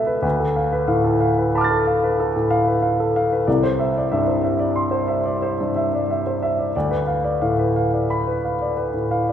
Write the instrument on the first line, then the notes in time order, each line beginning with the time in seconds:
grand piano
Already playing: C#2 B2 A4 B4 E5 A5 B5 E6 A6
0.07 B4
0.22 D2 B4
0.40 A4
0.56 F5
0.73 B4
0.88 A2 F5
1.04 A4
1.20 F5
1.38 B4
1.55 A5 B5 D6
1.61 F6 A6
1.71 A4
1.87 F5
2.03 B4
2.20 A4
2.36 A2
2.50 F5
2.67 B4
2.82 F5
3.00 A4
3.16 F5
3.32 B4
3.47 C2 D5
3.63 C5
3.79 E5
3.97 D5
4.12 G2 E5
4.28 C5
4.44 E5
4.59 D5
4.76 C6
4.91 C5
5.08 E5
5.25 D5
5.42 C5
5.61 G2
5.76 E5
5.95 D5
6.11 E5
6.27 C5
6.42 E5
6.59 D5
6.76 D2 D5
6.91 B4
7.07 F5
7.24 D5
7.42 A2 F5
7.59 B4
7.76 F5
7.93 D5
8.10 B5
8.27 B4
8.45 F5
8.62 D5
8.77 B4
8.94 A2
9.11 F5
9.29 D5